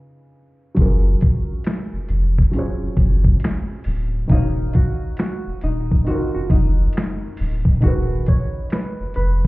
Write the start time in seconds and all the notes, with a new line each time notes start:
Already playing: C#3 C#4 D#4 F4 B4
0.75 F#1 F#3 C#4 F4, kick, closed hi-hat
0.80 G#4 A#4
1.21 kick, closed hi-hat
1.64 finger snap, snare, closed hi-hat
1.93 F1
2.09 F1, closed hi-hat
2.38 kick
2.51 F#3 C#4 F4, closed hi-hat
2.57 G#4 C#5
2.82 F#1
2.97 F#1, kick, closed hi-hat
3.24 kick
3.40 closed hi-hat
3.44 finger snap, snare
3.84 D1, open hi-hat
4.28 D#1 D#3 D#4 F5, kick, closed hi-hat
4.32 D#4 F#4 C#5
4.73 F#4, kick, closed hi-hat
5.17 F#4, finger snap, snare, closed hi-hat
5.47 D#1
5.61 D#1 D#4, closed hi-hat
5.92 kick
6.04 D#3 D#4 F4 F#4, closed hi-hat
6.10 F#4 A#4
6.35 F1 F#4
6.50 F1 D#4, kick, closed hi-hat
6.93 closed hi-hat
6.97 finger snap, snare
7.37 D1, open hi-hat
7.65 kick
7.80 D#1 D#3 D#4 F#4, kick, closed hi-hat
7.85 G#4 A#4 B4
8.26 C#5, kick, closed hi-hat
8.70 B4, finger snap, snare, closed hi-hat
9.00 F1
9.14 F1 B4, closed hi-hat